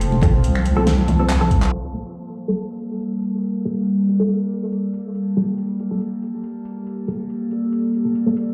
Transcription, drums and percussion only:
0.01 closed hi-hat medium
0.12 high conga medium
0.22 finger snap soft
0.22 kick loud
0.22 closed hi-hat medium
0.22 low conga medium
0.44 closed hi-hat medium
0.55 finger snap medium
0.65 closed hi-hat medium
0.76 high conga medium
0.87 snare loud
0.87 closed hi-hat medium
0.98 high conga medium
1.08 closed hi-hat medium
1.08 high conga loud
1.08 low conga medium
1.30 clap loud
1.30 closed hi-hat medium
1.51 kick medium
1.51 closed hi-hat medium
1.62 clap medium
1.94 closed hi-hat medium
2.15 closed hi-hat medium
2.37 closed hi-hat medium
2.58 closed hi-hat medium
2.79 closed hi-hat soft
3.01 closed hi-hat medium
3.22 open hi-hat medium
3.44 closed hi-hat medium
3.65 closed hi-hat soft
3.87 closed hi-hat medium
4.08 closed hi-hat soft
4.29 closed hi-hat medium
4.51 closed hi-hat soft
4.72 closed hi-hat medium
4.94 open hi-hat medium
5.15 closed hi-hat medium
5.37 closed hi-hat soft
5.58 closed hi-hat medium
5.79 closed hi-hat soft
6.01 closed hi-hat medium
6.22 closed hi-hat soft
6.44 closed hi-hat medium
6.65 open hi-hat medium
6.87 closed hi-hat medium
7.08 closed hi-hat soft
7.30 closed hi-hat medium
7.51 closed hi-hat soft
7.73 closed hi-hat medium
7.94 closed hi-hat soft
8.15 closed hi-hat medium
8.37 open hi-hat medium

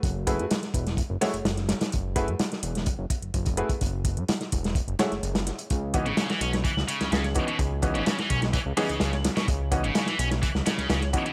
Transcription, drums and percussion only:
0.03 kick loud
0.03 closed hi-hat soft
0.03 closed hi-hat medium
0.27 kick medium
0.27 closed hi-hat medium
0.39 closed hi-hat soft
0.50 snare loud
0.50 closed hi-hat medium
0.50 closed hi-hat soft
0.63 snare soft
0.63 closed hi-hat soft
0.74 kick medium
0.74 closed hi-hat medium
0.87 snare soft
0.87 closed hi-hat soft
0.97 kick loud
0.97 closed hi-hat soft
0.97 closed hi-hat medium
1.22 snare soft
1.22 closed hi-hat medium
1.22 open hi-hat medium
1.33 closed hi-hat soft
1.45 snare loud
1.45 closed hi-hat soft
1.45 closed hi-hat medium
1.57 snare soft
1.57 closed hi-hat soft
1.69 snare loud
1.69 closed hi-hat medium
1.81 snare loud
1.81 closed hi-hat medium
1.81 closed hi-hat soft
1.92 kick loud
1.92 closed hi-hat soft
1.92 closed hi-hat medium
2.16 kick medium
2.16 closed hi-hat medium
2.28 closed hi-hat soft
2.39 snare loud
2.39 closed hi-hat soft
2.39 closed hi-hat medium
2.52 snare medium
2.52 closed hi-hat soft
2.63 closed hi-hat medium
2.75 snare soft
2.75 closed hi-hat soft
2.86 kick loud
2.86 closed hi-hat medium
2.86 closed hi-hat soft
3.10 kick loud
3.10 closed hi-hat medium
3.22 closed hi-hat soft
3.34 kick medium
3.34 closed hi-hat medium
3.34 closed hi-hat soft
3.46 kick loud
3.46 closed hi-hat medium
3.46 closed hi-hat soft
3.57 closed hi-hat medium
3.69 kick medium
3.69 closed hi-hat medium
3.69 closed hi-hat soft
3.81 kick loud
3.81 closed hi-hat soft
3.81 closed hi-hat medium
4.05 kick medium
4.05 closed hi-hat medium
4.17 closed hi-hat soft
4.28 snare loud
4.28 closed hi-hat medium
4.28 closed hi-hat soft
4.41 snare medium
4.41 closed hi-hat soft
4.52 kick medium
4.52 closed hi-hat medium
4.64 snare medium
4.64 closed hi-hat soft
4.75 kick loud
4.75 closed hi-hat soft
4.75 closed hi-hat medium
4.88 closed hi-hat soft
4.99 snare loud
4.99 closed hi-hat medium
5.11 snare soft
5.11 closed hi-hat soft
5.23 closed hi-hat soft
5.23 closed hi-hat medium
5.35 snare loud
5.35 closed hi-hat medium
5.35 closed hi-hat soft
5.47 snare soft
5.47 closed hi-hat medium
5.58 closed hi-hat medium
5.58 closed hi-hat soft
5.70 kick loud
5.70 closed hi-hat soft
5.70 closed hi-hat medium
5.94 kick medium
5.94 closed hi-hat medium
6.06 closed hi-hat soft
6.17 snare loud
6.17 closed hi-hat loud
6.17 closed hi-hat soft
6.30 snare medium
6.30 closed hi-hat soft
6.41 closed hi-hat medium
6.53 snare soft
6.53 closed hi-hat soft
6.65 kick loud
6.65 closed hi-hat soft
6.65 closed hi-hat medium
6.77 snare medium
6.88 closed hi-hat medium
7.01 snare soft
7.01 closed hi-hat soft
7.12 snare loud
7.12 closed hi-hat soft
7.12 closed hi-hat medium
7.24 snare soft
7.24 closed hi-hat soft
7.35 kick medium
7.35 closed hi-hat medium
7.48 closed hi-hat soft
7.59 kick loud
7.59 closed hi-hat medium
7.59 closed hi-hat soft
7.82 kick medium
7.82 closed hi-hat medium
7.95 closed hi-hat soft
8.06 snare loud
8.06 closed hi-hat soft
8.06 closed hi-hat medium
8.19 snare soft
8.19 closed hi-hat soft
8.30 kick medium
8.30 closed hi-hat medium
8.42 snare medium
8.42 closed hi-hat soft
8.53 kick loud
8.53 closed hi-hat soft
8.53 closed hi-hat medium
8.77 snare medium
8.77 closed hi-hat medium
8.77 open hi-hat medium
8.89 closed hi-hat soft
9.00 snare loud
9.00 closed hi-hat soft
9.00 closed hi-hat medium
9.13 snare soft
9.13 closed hi-hat soft
9.24 snare loud
9.24 closed hi-hat medium
9.37 snare loud
9.37 closed hi-hat soft
9.37 closed hi-hat medium
9.48 kick loud
9.48 closed hi-hat soft
9.48 closed hi-hat medium
9.72 kick loud
9.72 closed hi-hat medium
9.84 closed hi-hat soft
9.95 snare loud
9.95 closed hi-hat medium
9.95 closed hi-hat soft
10.06 snare medium
10.06 closed hi-hat soft
10.19 closed hi-hat medium
10.31 snare soft
10.31 closed hi-hat soft
10.43 kick loud
10.43 closed hi-hat medium
10.43 closed hi-hat soft
10.55 snare medium
10.66 snare loud
10.66 closed hi-hat medium
10.78 snare soft
10.78 closed hi-hat soft
10.90 snare loud
10.90 closed hi-hat medium
10.90 closed hi-hat soft
11.01 snare soft
11.01 closed hi-hat soft
11.13 kick medium
11.13 closed hi-hat medium
11.26 closed hi-hat soft

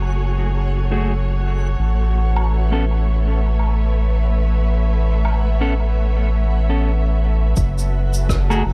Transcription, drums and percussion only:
2.36 low woodblock medium
3.59 low woodblock medium
5.25 low woodblock medium
7.56 kick loud
7.56 shaker medium
7.78 shaker soft
8.13 shaker medium
8.29 kick loud
8.29 cross-stick medium
8.29 shaker medium
8.50 low woodblock medium
8.50 shaker soft

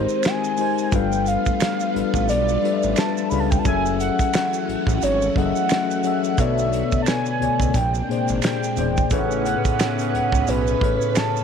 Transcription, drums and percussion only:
0.09 maracas soft
0.23 finger snap medium
0.23 closed hi-hat medium
0.23 maracas medium
0.25 finger snap medium
0.25 snare loud
0.44 maracas soft
0.57 open hi-hat soft
0.57 maracas soft
0.78 maracas soft
0.92 kick loud
0.92 closed hi-hat medium
0.92 maracas medium
1.12 maracas soft
1.26 closed hi-hat medium
1.26 maracas soft
1.46 kick medium
1.46 maracas soft
1.60 finger snap medium
1.60 snare loud
1.60 closed hi-hat medium
1.60 maracas medium
1.80 maracas soft
1.96 closed hi-hat medium
2.14 kick medium
2.14 maracas medium
2.28 closed hi-hat medium
2.28 maracas medium
2.49 maracas soft
2.65 closed hi-hat medium
2.83 maracas soft
2.96 finger snap medium
2.96 closed hi-hat medium
2.96 maracas medium
2.98 finger snap medium
2.98 snare loud
3.17 maracas soft
3.31 open hi-hat soft
3.31 maracas soft
3.52 kick loud
3.52 maracas soft
3.65 kick loud
3.65 closed hi-hat medium
3.65 maracas medium
3.86 maracas soft
4.00 closed hi-hat medium
4.00 maracas soft
4.19 kick medium
4.19 closed hi-hat soft
4.19 maracas soft
4.34 finger snap medium
4.34 snare loud
4.34 closed hi-hat medium
4.34 maracas medium
4.53 maracas soft
4.69 closed hi-hat medium
4.87 kick medium
4.87 maracas medium
5.02 closed hi-hat medium
5.02 maracas medium
5.22 maracas soft
5.36 kick medium
5.36 closed hi-hat medium
5.56 maracas soft
5.69 finger snap medium
5.69 closed hi-hat medium
5.69 maracas medium
5.71 finger snap medium
5.71 snare loud
5.91 maracas soft
6.03 closed hi-hat medium
6.03 maracas soft
6.24 maracas soft
6.38 kick loud
6.38 closed hi-hat medium
6.38 maracas medium
6.58 maracas soft
6.73 closed hi-hat medium
6.73 maracas soft
6.92 kick medium
6.92 maracas soft
7.06 finger snap medium
7.06 snare loud
7.06 closed hi-hat medium
7.06 maracas medium
7.26 maracas soft
7.42 closed hi-hat medium
7.60 kick medium
7.60 maracas medium
7.74 kick medium
7.74 closed hi-hat medium
7.74 maracas medium
7.94 maracas soft
8.11 closed hi-hat medium
8.28 maracas soft
8.42 finger snap medium
8.42 closed hi-hat medium
8.42 maracas medium
8.44 finger snap medium
8.44 snare loud
8.63 maracas soft
8.77 closed hi-hat medium
8.77 maracas soft
8.97 kick medium
8.97 maracas soft
9.10 kick loud
9.10 closed hi-hat medium
9.10 maracas medium
9.31 maracas soft
9.45 closed hi-hat medium
9.45 maracas soft
9.65 kick medium
9.65 closed hi-hat soft
9.65 maracas soft
9.80 finger snap medium
9.80 snare loud
9.80 closed hi-hat medium
9.80 maracas medium
9.99 closed hi-hat soft
9.99 maracas soft
10.15 closed hi-hat medium
10.32 kick medium
10.32 maracas medium
10.47 closed hi-hat medium
10.47 maracas medium
10.67 maracas soft
10.81 kick medium
10.81 closed hi-hat medium
11.01 maracas soft
11.15 finger snap medium
11.15 snare loud
11.15 closed hi-hat medium
11.15 maracas medium
11.36 maracas soft

